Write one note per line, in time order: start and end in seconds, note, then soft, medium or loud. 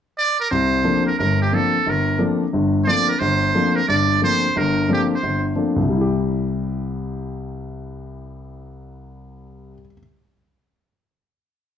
0.18 0.39 D5 loud
0.40 0.51 A#4 medium
0.51 0.81 C2 medium
0.51 0.81 C3 medium
0.51 1.03 C5 medium
0.84 1.08 F3 medium
0.84 1.08 A3 soft
0.84 1.08 A#3 soft
0.84 1.08 C4 soft
0.84 1.08 D4 medium
1.07 1.18 A#4 medium
1.19 1.49 G1 medium
1.19 1.48 G2 medium
1.19 1.39 A#4 medium
1.42 1.56 G4 medium
1.52 1.76 F3 soft
1.52 1.76 A3 soft
1.52 1.76 A#3 soft
1.52 1.76 C4 soft
1.52 1.76 D4 medium
1.52 1.91 A4 medium
1.86 2.16 G1 medium
1.86 2.22 A#4 medium
2.19 2.43 F3 medium
2.19 2.42 A3 soft
2.19 2.42 A#3 soft
2.19 2.43 C4 soft
2.19 2.43 D4 medium
2.53 2.83 G1 medium
2.53 2.82 G2 medium
2.84 3.10 F3 soft
2.84 3.10 A3 soft
2.84 3.10 A#3 soft
2.84 3.11 C4 soft
2.84 3.11 D4 medium
2.84 2.89 C5 medium
2.84 3.07 D5 loud
3.08 3.21 A#4 medium
3.19 3.50 G1 medium
3.19 3.77 C5 medium
3.55 3.78 F3 medium
3.55 3.78 A3 soft
3.55 3.78 A#3 soft
3.55 3.78 C4 soft
3.55 3.78 D4 medium
3.76 3.88 A#4 medium
3.88 4.17 G1 medium
3.88 4.18 G2 medium
3.88 4.20 D5 medium
4.22 4.45 F3 soft
4.22 4.45 A3 soft
4.22 4.45 A#3 soft
4.22 4.45 C4 soft
4.22 4.45 D4 soft
4.22 4.59 C5 loud
4.56 4.85 G1 medium
4.56 4.85 G2 medium
4.56 4.90 A#4 medium
4.89 5.12 F3 medium
4.89 5.12 A3 soft
4.89 5.12 A#3 medium
4.89 5.12 C4 soft
4.89 5.12 D4 medium
4.93 5.02 G4 medium
5.15 5.44 C5 medium
5.23 5.52 G1 medium
5.55 5.79 F3 soft
5.55 5.79 A3 soft
5.55 5.79 A#3 soft
5.55 5.79 C4 soft
5.55 5.79 D4 medium
5.76 9.72 C2 medium
5.82 9.78 C3 medium
5.89 9.85 G3 medium
5.95 9.91 E4 medium
6.01 9.97 G4 medium